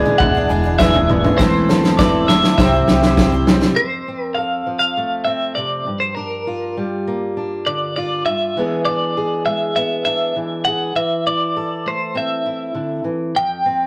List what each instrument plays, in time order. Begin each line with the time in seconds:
Already playing: tonewheel organ D3 E3 G#3 B3 E4, steel-string acoustic guitar E3 G#3 B3 G#4, upright piano D5 E5 G#5, clean electric guitar G#5, glockenspiel G#6
0.05 twelve-string acoustic guitar B3 D4 G#4, floor tom
0.18 upright bass E1, steel-string acoustic guitar D4, upright piano E5, clean electric guitar F#5, glockenspiel F#6, kick, floor tom
0.35 twelve-string acoustic guitar B3 D4 G#4
0.49 upright bass E1, twelve-string acoustic guitar G#3 B3 D4 G#4, upright piano G#5
0.64 twelve-string acoustic guitar B3 D4 G#4
0.79 twelve-string acoustic guitar E3 G#3 B3 D4 G#4, steel-string acoustic guitar E3, upright piano D5, clean electric guitar E5, glockenspiel E6, kick, snare, mid tom
0.94 twelve-string acoustic guitar B3 D4 G#4, floor tom
1.09 steel-string acoustic guitar B3, upright piano E5, floor tom, mid tom
1.24 twelve-string acoustic guitar B3 D4 G#4, floor tom, mid tom
1.37 upright bass E1, twelve-string acoustic guitar E3 A3 C4 E4 A4, steel-string acoustic guitar E3 C4, tonewheel organ A3 C4, clean electric guitar C5, upright piano A5, glockenspiel C6, kick, snare
1.69 twelve-string acoustic guitar A3 E4 A4, steel-string acoustic guitar A4, upright piano C5, snare
1.84 twelve-string acoustic guitar C4 E4 A4, snare
1.97 twelve-string acoustic guitar E3 A3 C4 E4 A4, steel-string acoustic guitar E3, clean electric guitar D5, upright piano E5, glockenspiel D6, kick, snare
2.27 steel-string acoustic guitar D3, twelve-string acoustic guitar A3 C4 E4, clean electric guitar E5, upright piano A5, glockenspiel E6, snare
2.31 twelve-string acoustic guitar A4
2.44 twelve-string acoustic guitar C4 E4 A4, snare
2.58 upright bass C2, twelve-string acoustic guitar C3 G3 C4 E4 C5, steel-string acoustic guitar C3 C4, tonewheel organ G3, upright piano C5, clean electric guitar E5, glockenspiel E6, kick, snare
2.73 twelve-string acoustic guitar C4 E4 C5
2.88 upright bass C2, twelve-string acoustic guitar G3 C4 E4 C5, steel-string acoustic guitar G4, upright piano E5, snare
3.03 twelve-string acoustic guitar C4 E4 C5, snare
3.17 twelve-string acoustic guitar C3 G3 C4 E4 C5, upright piano G5, kick, snare
3.32 twelve-string acoustic guitar C4 E4 C5
3.47 steel-string acoustic guitar G3, upright piano C5, snare
3.62 snare
3.76 steel-string acoustic guitar F2, clean electric guitar C5
4.08 steel-string acoustic guitar C4
4.24 clean electric guitar A#4
4.35 steel-string acoustic guitar A4, clean electric guitar F5
4.66 steel-string acoustic guitar F3
4.79 clean electric guitar F5
4.97 steel-string acoustic guitar A3
5.25 steel-string acoustic guitar C4, clean electric guitar E5
5.55 steel-string acoustic guitar C3, clean electric guitar D5
5.87 steel-string acoustic guitar G2
6.00 clean electric guitar C5
6.15 steel-string acoustic guitar D4, clean electric guitar A#4
6.47 steel-string acoustic guitar F4
6.77 steel-string acoustic guitar G3
7.08 steel-string acoustic guitar A#3
7.37 steel-string acoustic guitar D4
7.67 steel-string acoustic guitar D3, clean electric guitar D5
7.96 steel-string acoustic guitar F4, clean electric guitar D5
8.26 steel-string acoustic guitar G2, clean electric guitar E5
8.57 steel-string acoustic guitar E3 G#3 B3 D4 G#4
8.85 steel-string acoustic guitar D4, clean electric guitar D5
9.17 steel-string acoustic guitar G#4
9.46 steel-string acoustic guitar G#3, clean electric guitar E5
9.76 steel-string acoustic guitar B3, clean electric guitar E5
10.05 steel-string acoustic guitar D4, clean electric guitar E5
10.36 steel-string acoustic guitar E3
10.65 steel-string acoustic guitar G#4, clean electric guitar F#5
10.95 steel-string acoustic guitar E3, clean electric guitar E5
11.27 steel-string acoustic guitar E4, clean electric guitar D5
11.56 steel-string acoustic guitar A4
11.86 steel-string acoustic guitar A3, clean electric guitar C5
12.15 steel-string acoustic guitar C4, clean electric guitar E5
12.46 steel-string acoustic guitar E4
12.75 steel-string acoustic guitar D3
13.04 steel-string acoustic guitar E3
13.35 steel-string acoustic guitar F2, clean electric guitar G5
13.66 steel-string acoustic guitar C4